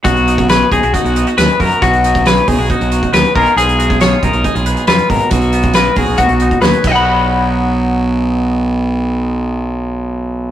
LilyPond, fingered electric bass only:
\new Staff \with { instrumentName = "Fingered electric bass" } { \clef bass \time 4/4 \key b \lydian \tempo 4 = 137 b,,4. b,,16 b,,16 r16 b,,8 r16 dis,16 r16 fis,16 r16 | b,,4. b,,16 b,,16 r16 b,,8 r16 dis,16 r16 b,,16 r16 | b,,4. b,,16 b,,16 r16 b,,8 r16 eis,16 r16 gis,,16 r16 | b,,4. b,,16 b,,16 b,,16 b,,8 r16 dis,16 r16 b,,8~ |
b,,1~ | b,,1 | }